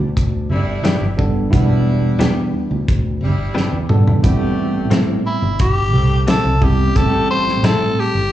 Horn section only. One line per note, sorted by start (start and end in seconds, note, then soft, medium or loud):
0.50 1.02 G3 medium
0.50 1.02 D4 medium
0.50 1.02 E4 loud
1.51 2.20 G3 medium
1.51 2.20 D4 medium
1.51 2.20 E4 medium
3.21 3.73 G3 medium
3.21 3.73 D4 medium
3.21 3.73 E4 medium
4.21 4.90 A3 medium
4.21 4.91 G4 medium
5.91 6.44 A3 medium
5.91 6.45 C4 medium
5.91 6.45 G4 medium
6.92 7.62 A3 medium
6.92 7.63 G4 medium